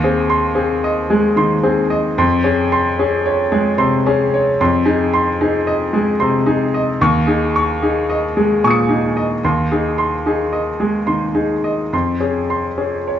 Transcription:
grand piano
Already playing: D#2 C6
0.04 C4 G#4
0.30 C6
0.55 C4 G#4
0.84 D#5
1.10 G#3 G#4
1.36 D#3 C6
1.63 C4 G#4
1.90 D#5
2.18 F2 C6
2.44 C#4 G#4
2.72 C6
2.99 C#4 G#4
3.26 C#5
3.52 G#3 G#4
3.78 C3 C6
4.06 C#4 G#4
4.34 C#5
4.61 F2 C6
4.85 D#4 G#4
5.13 C6
5.41 D#4 G#4
5.67 D#5
5.93 G#3 G#4
6.20 C3 C6
6.46 D#4 G#4
6.74 D#5
7.01 D#2 C#6
7.27 D#4 G#4
7.56 C#6
7.82 D#4 G#4
8.10 D#5
8.37 G#3 G#4
8.64 A#2 G#5 C#6 D#6
8.71 C#7
8.89 D#4 G#4
9.17 D#5
9.44 D#2 C6
9.72 D#4 G#4
9.98 C6
10.26 D#4 G#4
10.53 D#5
10.80 G#3 G#4
11.07 D#3 C6
11.35 D#4 G#4
11.64 D#5
11.93 F2 C6
12.20 C#4 G#4
12.50 C6
12.78 C#4 G#4
13.08 C#5

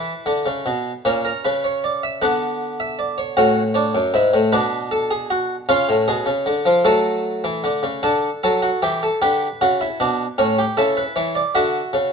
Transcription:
harpsichord
Already playing: E3 E4 B4
0.26 D3
0.46 C#3
0.66 B2
1.05 A#2 C#4 C#5
1.25 A#4
1.45 C#3 B4
1.64 C#5
1.84 D5
2.03 E5
2.22 D3 B3 F#5
2.80 E5
2.99 D5
3.18 C#5
3.37 A2 C#4 F#4
3.74 D4 C#5
3.95 F#2
4.14 G#2 E4
4.34 A2
4.52 B2 D4 B4
4.91 A4
5.11 G#4
5.30 F#4
5.69 C#3 C#4 F4
5.89 A2
6.08 B2 G#4
6.26 C#3
6.46 D3
6.66 F3
6.85 F#3 A3 A4
7.44 E3
7.64 D3
7.83 C#3
8.03 D3 D4 A4
8.43 F#3 A4
8.62 F#4
8.82 E3 G4
9.03 A4
9.22 D3 G4 B4
9.61 C#3 F#4
9.81 E4
10.00 B2 D4
10.38 A2 C#4 C#5
10.58 G4
10.77 C#3 E4 A4
10.97 B4
11.16 E3 C#5
11.35 D5
11.55 D3 F#4 E5
11.93 C#3

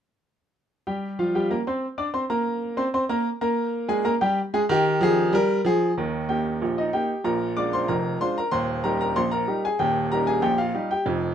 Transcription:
upright piano
0.87 G3 G4 G5
1.19 F3 F4 F5
1.35 G3 G4 G5
1.51 A#3 A#4 A#5
1.67 C4 C5 C6
1.98 D4 D5 D6
2.14 C4 C5 C6
2.30 A#3 A#4 A#5
2.77 C4 C5 C6
2.94 C4 C5 C6
3.09 A#3 A#4 A#5
3.41 A#3 A#4 A#5
3.88 G#3 G#4 G#5
4.05 A#3 A#4 A#5
4.21 G3 G4 G5
4.54 G#3 G#4 G#5
4.69 D#3 G4
5.01 F3 G#4
5.33 G3 A#4
5.65 F3 G#4
5.97 D#2 D#3
6.29 A#3 D#4 G4 G5
6.62 A#1 A#2
6.78 D#4 D#5
6.93 A#3 D#4 G4 G5
7.24 A#1 A#2 A#4 A#5
7.57 G#3 D4 F4 D5 D6
7.73 C5 C6
7.88 F1 F2 A#4 A#5
8.21 G#3 D4 F4 C5 C6
8.38 A#4 A#5
8.51 D#1 D#2 C5 C6
8.84 G3 D#4 G4 A#4 A#5
9.01 A#4 A#5
9.16 A#1 A#2 C5 C6
9.31 A#4 A#5
9.47 G3 D#4 G4
9.65 G#4 G#5
9.79 D#1 D#2 G4 G5
10.12 G3 D#4 G4 A#4 A#5
10.27 G#4 G#5
10.42 A#1 A#2 G4 G5
10.58 F4 F5
10.74 G3 D#4 G4
10.91 G4 G5
11.06 F1 F2

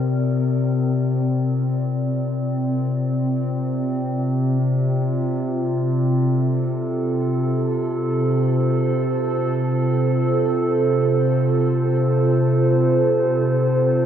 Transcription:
ambient pad
Already playing: C3 C4 F4 A#4 D5
4.19 C3
4.59 C4
4.74 F4
6.11 A4
7.99 C5

